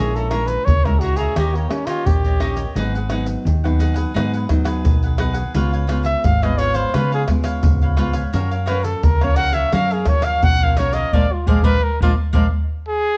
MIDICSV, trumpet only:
0, 0, Header, 1, 2, 480
1, 0, Start_track
1, 0, Tempo, 697674
1, 1900, Time_signature, 4, 2, 24, 8
1, 9063, End_track
2, 0, Start_track
2, 0, Title_t, "Trumpet"
2, 0, Program_c, 0, 56
2, 0, Note_on_c, 0, 68, 80
2, 104, Note_on_c, 0, 69, 79
2, 114, Note_off_c, 0, 68, 0
2, 207, Note_on_c, 0, 70, 84
2, 217, Note_off_c, 0, 69, 0
2, 321, Note_on_c, 0, 71, 79
2, 332, Note_off_c, 0, 70, 0
2, 447, Note_on_c, 0, 73, 91
2, 458, Note_off_c, 0, 71, 0
2, 585, Note_on_c, 0, 70, 75
2, 596, Note_off_c, 0, 73, 0
2, 685, Note_on_c, 0, 66, 83
2, 695, Note_off_c, 0, 70, 0
2, 804, Note_on_c, 0, 68, 94
2, 814, Note_off_c, 0, 66, 0
2, 940, Note_on_c, 0, 67, 78
2, 950, Note_off_c, 0, 68, 0
2, 1068, Note_on_c, 0, 58, 65
2, 1078, Note_off_c, 0, 67, 0
2, 1165, Note_on_c, 0, 61, 81
2, 1175, Note_off_c, 0, 58, 0
2, 1281, Note_on_c, 0, 65, 74
2, 1291, Note_off_c, 0, 61, 0
2, 1415, Note_on_c, 0, 67, 93
2, 1426, Note_off_c, 0, 65, 0
2, 1897, Note_off_c, 0, 67, 0
2, 4164, Note_on_c, 0, 76, 85
2, 4300, Note_on_c, 0, 77, 84
2, 4310, Note_off_c, 0, 76, 0
2, 4426, Note_on_c, 0, 75, 82
2, 4436, Note_off_c, 0, 77, 0
2, 4528, Note_on_c, 0, 73, 96
2, 4538, Note_off_c, 0, 75, 0
2, 4646, Note_on_c, 0, 72, 86
2, 4656, Note_off_c, 0, 73, 0
2, 4782, Note_on_c, 0, 71, 83
2, 4793, Note_off_c, 0, 72, 0
2, 4900, Note_off_c, 0, 71, 0
2, 4914, Note_on_c, 0, 68, 82
2, 4981, Note_off_c, 0, 68, 0
2, 5975, Note_on_c, 0, 71, 82
2, 6082, Note_on_c, 0, 69, 74
2, 6092, Note_off_c, 0, 71, 0
2, 6223, Note_on_c, 0, 70, 79
2, 6233, Note_off_c, 0, 69, 0
2, 6354, Note_on_c, 0, 73, 94
2, 6364, Note_off_c, 0, 70, 0
2, 6442, Note_on_c, 0, 78, 114
2, 6453, Note_off_c, 0, 73, 0
2, 6563, Note_on_c, 0, 76, 99
2, 6573, Note_off_c, 0, 78, 0
2, 6696, Note_on_c, 0, 77, 101
2, 6707, Note_off_c, 0, 76, 0
2, 6828, Note_on_c, 0, 68, 76
2, 6838, Note_off_c, 0, 77, 0
2, 6936, Note_on_c, 0, 73, 101
2, 6946, Note_off_c, 0, 68, 0
2, 7048, Note_on_c, 0, 77, 96
2, 7058, Note_off_c, 0, 73, 0
2, 7181, Note_on_c, 0, 78, 118
2, 7191, Note_off_c, 0, 77, 0
2, 7318, Note_on_c, 0, 77, 95
2, 7328, Note_off_c, 0, 78, 0
2, 7418, Note_on_c, 0, 73, 95
2, 7428, Note_off_c, 0, 77, 0
2, 7524, Note_on_c, 0, 75, 93
2, 7535, Note_off_c, 0, 73, 0
2, 7661, Note_on_c, 0, 74, 95
2, 7671, Note_off_c, 0, 75, 0
2, 7792, Note_on_c, 0, 65, 68
2, 7802, Note_off_c, 0, 74, 0
2, 7893, Note_on_c, 0, 68, 84
2, 7903, Note_off_c, 0, 65, 0
2, 8009, Note_on_c, 0, 71, 101
2, 8019, Note_off_c, 0, 68, 0
2, 8141, Note_on_c, 0, 70, 87
2, 8151, Note_off_c, 0, 71, 0
2, 8262, Note_off_c, 0, 70, 0
2, 8272, Note_on_c, 0, 65, 77
2, 8342, Note_off_c, 0, 65, 0
2, 8860, Note_on_c, 0, 68, 100
2, 9063, Note_off_c, 0, 68, 0
2, 9063, End_track
0, 0, End_of_file